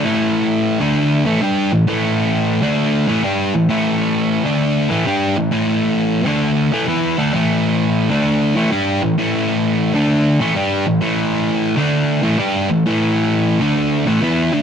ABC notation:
X:1
M:4/4
L:1/8
Q:"Swing" 1/4=131
K:Ddor
V:1 name="Distorted electric guitar" clef=bass
[A,,E,A,]3 [D,A,D]2 [A,,E,A,] [G,DG] [A,,E,] | [A,,E,A,]3 [D,A,D]2 [A,,E,A,] [G,DG] [A,,E,] | [A,,E,A,]3 [D,A,D]2 [A,,E,A,] [G,DG] [A,,E,] | [A,,E,A,]3 [D,A,D]2 [A,,E,A,] [E,B,E] [D,A,D] |
[A,,E,A,]3 [D,A,D]2 [A,,E,A,] [G,DG] [A,,E,] | [A,,E,A,]3 [D,A,D]2 [A,,E,A,] [G,DG] [A,,E,] | [A,,E,A,]3 [D,A,D]2 [A,,E,A,] [G,DG] [A,,E,] | [A,,E,A,]3 [D,A,D]2 [A,,E,A,] [E,B,E] [D,A,D] |]